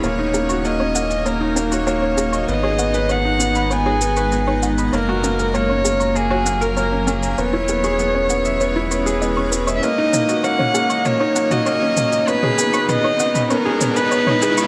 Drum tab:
SH |x-xxx-xxx-xxx-xx|x-xxx-xxx-xxx-xx|x-xxx-xxx-xxx-xx|x-xxx-xxx-xxx-xx|
T2 |----------------|----------------|----------------|----------------|

SH |x-xxx-xxx-xxx-xx|x-xxx-xxx-xxx-xx|
T2 |--o--o--o--o--o-|-o--o--o--o--o--|